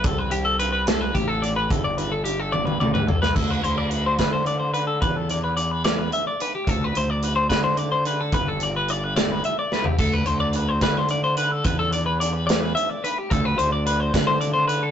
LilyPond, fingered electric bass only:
\new Staff \with { instrumentName = "Fingered electric bass" } { \clef bass \time 6/8 \key d \mixolydian \tempo 4. = 72 c,2 a,,4 | g,,2 d,8 c,8 | d,8 d,4 d4. | e,2 r4 |
d,8 d,4 d4. | g,,2 r4 | d,8 d,4 d4. | e,2 r4 |
d,8 d,4 d4. | }